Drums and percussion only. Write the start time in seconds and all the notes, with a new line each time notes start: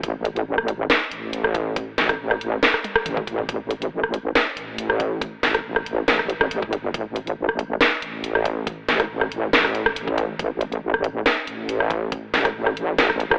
0.03 kick, closed hi-hat
0.25 closed hi-hat
0.36 closed hi-hat
0.58 cross-stick
0.68 closed hi-hat
0.90 snare, closed hi-hat
1.11 closed hi-hat
1.33 closed hi-hat
1.44 cross-stick
1.55 kick, closed hi-hat
1.76 kick, closed hi-hat
1.98 snare, closed hi-hat
2.09 kick, cross-stick, closed hi-hat
2.31 cross-stick
2.41 closed hi-hat
2.63 snare, closed hi-hat
2.74 cross-stick
2.84 closed hi-hat, high tom
2.96 cross-stick
3.06 closed hi-hat, mid tom
3.17 kick, mid tom
3.27 kick, closed hi-hat
3.39 mid tom
3.49 kick, closed hi-hat
3.71 closed hi-hat
3.82 closed hi-hat
4.03 cross-stick
4.14 closed hi-hat
4.35 snare, closed hi-hat
4.57 closed hi-hat
4.78 closed hi-hat
4.90 cross-stick
5.00 kick, closed hi-hat
5.21 kick, closed hi-hat
5.43 snare, closed hi-hat
5.54 kick, cross-stick, closed hi-hat
5.76 cross-stick
5.86 closed hi-hat
6.08 snare, closed hi-hat
6.19 cross-stick
6.30 closed hi-hat
6.41 cross-stick
6.51 closed hi-hat
6.62 kick
6.73 closed hi-hat
6.94 kick, closed hi-hat
7.16 closed hi-hat
7.27 closed hi-hat
7.49 cross-stick
7.59 closed hi-hat
7.81 snare, closed hi-hat
8.02 closed hi-hat
8.24 closed hi-hat
8.35 cross-stick
8.45 kick, closed hi-hat
8.67 kick, closed hi-hat
8.89 snare, closed hi-hat
9.00 kick, cross-stick, closed hi-hat
9.21 cross-stick
9.32 closed hi-hat
9.53 snare, closed hi-hat
9.65 cross-stick
9.75 closed hi-hat
9.86 cross-stick
9.96 closed hi-hat
10.08 kick
10.18 kick, closed hi-hat
10.39 kick, closed hi-hat
10.61 closed hi-hat
10.72 closed hi-hat
10.94 cross-stick
11.04 closed hi-hat
11.26 snare, closed hi-hat
11.47 closed hi-hat
11.69 closed hi-hat
11.80 cross-stick
11.90 kick, closed hi-hat
12.12 kick, closed hi-hat
12.34 snare, closed hi-hat
12.45 kick, cross-stick, closed hi-hat
12.67 cross-stick
12.77 closed hi-hat
12.98 snare, closed hi-hat
13.10 cross-stick
13.20 closed hi-hat
13.31 cross-stick